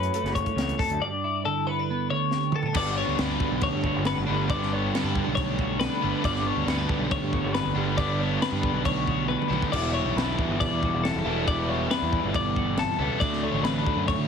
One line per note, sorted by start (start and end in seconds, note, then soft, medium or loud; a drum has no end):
0.00 0.35 F#2 medium
0.00 0.98 F#3 medium
0.00 0.14 A3 medium
0.00 0.99 C#4 medium
0.00 1.01 E4 soft
0.00 0.35 B4 medium
0.00 closed hi-hat soft
0.14 0.99 A3 medium
0.14 closed hi-hat medium
0.23 0.41 F#1 loud
0.23 snare soft
0.23 closed hi-hat soft
0.35 0.56 F#2 medium
0.35 0.79 C#5 medium
0.35 kick medium
0.35 closed hi-hat medium
0.46 kick medium
0.46 closed hi-hat soft
0.55 0.73 C#2 medium
0.55 0.78 E2 medium
0.55 snare loud
0.55 closed hi-hat medium
0.69 closed hi-hat soft
0.79 1.01 F#2 medium
0.79 1.01 A4 medium
0.79 kick medium
0.79 snare soft
0.79 open hi-hat medium
0.89 0.98 D2 medium
0.89 closed hi-hat soft
1.00 2.09 G2 medium
1.00 1.66 D4 medium
1.00 1.45 D5 medium
1.24 2.32 E4 medium
1.45 2.76 D3 medium
1.45 1.67 A4 medium
1.67 1.79 B3 medium
1.67 2.10 B4 medium
1.79 2.54 D4 soft
1.90 2.53 B3 medium
2.10 2.75 D2 medium
2.10 2.54 C#5 medium
2.31 2.73 G4 medium
2.31 snare medium
2.52 2.66 B3 medium
2.52 2.76 A4 medium
2.52 mid tom medium
2.63 2.76 D4 medium
2.63 floor tom medium
2.74 3.01 G1 medium
2.74 4.30 G2 medium
2.74 3.63 G2 medium
2.74 4.26 D3 medium
2.74 3.40 D3 medium
2.74 4.28 G3 medium
2.74 4.27 B3 medium
2.74 2.97 B3 medium
2.74 4.26 D4 loud
2.74 2.97 D5 medium
2.74 kick loud
2.74 crash loud
2.74 crash medium
2.79 3.20 D4 medium
2.79 3.84 F#4 medium
2.97 4.07 B3 medium
2.97 3.20 C#5 medium
3.07 3.16 D2 medium
3.19 3.36 D2 medium
3.19 4.07 D4 medium
3.19 3.63 B4 medium
3.19 snare loud
3.19 crash medium
3.40 4.26 D3 medium
3.40 kick loud
3.51 3.68 B1 medium
3.61 4.49 D2 medium
3.61 4.06 C#5 medium
3.61 kick loud
3.61 crash medium
3.74 3.82 G2 medium
3.83 3.92 G1 medium
3.83 4.51 F#4 medium
3.83 kick medium
3.96 4.13 G1 loud
4.05 4.17 B3 medium
4.05 4.50 B4 medium
4.05 snare loud
4.05 crash soft
4.17 4.26 G1 medium
4.17 4.49 D4 medium
4.26 4.89 G1 loud
4.26 5.14 D3 medium
4.26 4.48 D3 medium
4.26 4.49 G3 medium
4.26 4.51 B3 medium
4.26 4.51 D4 medium
4.30 4.47 G2 medium
4.48 6.04 G2 medium
4.48 5.36 G2 medium
4.48 6.00 D3 medium
4.48 6.02 G3 medium
4.48 6.01 B3 medium
4.48 6.01 D4 medium
4.48 4.73 D5 medium
4.48 kick loud
4.48 crash medium
4.62 snare soft
4.73 4.95 B3 medium
4.73 4.93 C#5 medium
4.93 5.04 B3 medium
4.93 5.35 B4 medium
4.93 snare loud
4.93 crash medium
5.04 5.21 G2 medium
5.04 5.80 D4 medium
5.15 6.01 D3 medium
5.15 kick medium
5.26 5.87 B1 medium
5.35 5.79 C#5 medium
5.35 kick loud
5.35 crash medium
5.59 6.26 F#4 medium
5.59 kick medium
5.80 6.67 D4 medium
5.80 6.23 B4 medium
5.80 snare loud
5.80 crash medium
6.01 6.12 G1 loud
6.01 6.22 G2 medium
6.01 6.87 D3 medium
6.01 6.23 D3 medium
6.01 6.24 G3 medium
6.01 6.25 B3 medium
6.01 6.26 D4 medium
6.22 6.50 G1 medium
6.22 7.74 G2 medium
6.22 7.10 G2 medium
6.22 7.75 D3 medium
6.22 7.77 G3 medium
6.22 7.76 B3 loud
6.22 6.47 D5 loud
6.22 kick loud
6.22 crash medium
6.26 7.74 D4 loud
6.36 snare soft
6.46 6.67 B3 medium
6.46 6.67 C#5 medium
6.56 6.65 D2 medium
6.67 6.84 D2 loud
6.67 6.78 B3 medium
6.67 7.11 B4 medium
6.67 snare loud
6.67 crash medium
6.78 7.54 D4 medium
6.88 7.76 D3 medium
6.88 kick loud
6.99 7.17 B1 loud
7.11 7.99 D2 medium
7.11 7.54 C#5 medium
7.11 kick loud
7.11 crash medium
7.22 7.30 G2 medium
7.33 7.42 G1 loud
7.33 7.97 F#4 medium
7.33 kick medium
7.43 7.61 G1 medium
7.54 8.42 D4 medium
7.54 7.97 B4 medium
7.54 snare loud
7.54 crash medium
7.65 7.74 G1 medium
7.75 8.36 G1 loud
7.75 7.96 G2 medium
7.75 8.62 D3 medium
7.75 7.97 D3 medium
7.75 7.99 G3 medium
7.75 7.99 B3 medium
7.75 8.01 D4 medium
7.97 9.49 G2 medium
7.97 8.85 G2 medium
7.97 9.49 D3 medium
7.97 9.51 G3 medium
7.97 9.50 B3 loud
7.97 8.20 D5 loud
7.97 kick loud
7.97 crash medium
8.01 9.49 D4 medium
8.20 9.98 B3 medium
8.20 8.42 C#5 medium
8.42 9.32 D4 medium
8.42 8.85 B4 medium
8.42 snare loud
8.42 crash medium
8.51 8.69 G2 medium
8.63 9.51 D3 medium
8.63 kick medium
8.73 9.35 B1 loud
8.85 9.72 D2 medium
8.85 9.28 C#5 medium
8.85 kick loud
8.85 crash medium
9.07 9.71 F#4 medium
9.07 kick medium
9.28 9.78 D4 medium
9.28 9.72 B4 medium
9.28 high tom medium
9.42 mid tom medium
9.49 9.59 B1 loud
9.49 9.72 G2 medium
9.49 9.70 D3 medium
9.49 9.72 G3 medium
9.49 9.73 B3 medium
9.49 9.74 D4 medium
9.49 mid tom medium
9.53 10.39 D3 medium
9.62 kick medium
9.71 9.99 E1 loud
9.71 11.45 E2 medium
9.71 11.23 E3 medium
9.71 11.24 G3 medium
9.71 11.24 B3 medium
9.71 9.94 D5 medium
9.71 kick loud
9.71 crash loud
9.71 crash medium
9.75 11.23 E4 loud
9.94 10.17 C#5 medium
9.99 11.69 G3 medium
10.04 10.13 B1 medium
10.16 10.33 B1 medium
10.16 10.60 B4 medium
10.16 snare loud
10.16 crash medium
10.20 11.03 D4 medium
10.39 11.26 E3 medium
10.39 kick medium
10.48 10.66 G1 loud
10.60 11.26 B2 medium
10.60 11.03 D5 medium
10.60 kick loud
10.60 crash medium
10.71 10.80 E2 medium
10.83 10.91 E1 medium
10.83 11.46 F#4 medium
10.83 kick medium
10.93 11.10 E1 medium
11.04 11.51 D4 medium
11.04 11.47 A4 medium
11.04 snare loud
11.04 crash medium
11.15 11.23 E1 medium
11.24 11.86 E1 medium
11.24 11.45 E3 medium
11.24 11.47 G3 medium
11.24 11.46 B3 medium
11.24 11.45 E4 medium
11.28 11.45 E3 medium
11.47 12.78 E2 medium
11.47 12.98 E3 medium
11.47 12.99 G3 medium
11.47 12.99 B3 loud
11.47 11.69 D5 medium
11.47 kick loud
11.47 crash medium
11.51 12.98 E4 medium
11.69 13.22 G3 medium
11.69 11.90 C#5 medium
11.91 14.28 D4 medium
11.91 12.34 B4 medium
11.91 snare loud
11.91 crash medium
12.02 12.19 E2 medium
12.13 13.19 E3 medium
12.13 kick medium
12.24 12.85 G1 loud
12.34 13.18 B2 medium
12.34 12.78 D5 medium
12.34 kick loud
12.34 crash medium
12.56 13.19 F#4 medium
12.56 kick medium
12.77 12.98 F#2 medium
12.77 13.22 A4 medium
12.77 snare loud
12.77 crash medium
12.99 13.08 C#2 loud
12.99 13.20 E2 medium
12.99 13.21 G3 medium
12.99 13.21 B3 medium
12.99 13.19 E4 medium
13.04 13.20 E3 medium
13.20 14.28 D2 medium
13.20 13.47 D2 loud
13.20 14.28 D3 medium
13.20 14.28 F#3 medium
13.20 14.28 A3 loud
13.20 13.43 D5 loud
13.20 kick loud
13.20 crash medium
13.25 14.28 D4 loud
13.33 snare soft
13.43 14.28 A3 medium
13.43 13.64 C#5 medium
13.53 13.62 A1 medium
13.63 13.81 A1 loud
13.63 14.08 B4 medium
13.63 snare loud
13.63 crash medium
13.86 14.28 D3 medium
13.86 kick loud
13.95 14.13 F#2 loud
14.08 14.28 A2 medium
14.08 14.28 C#5 medium
14.08 kick loud
14.08 crash medium
14.18 14.27 D3 loud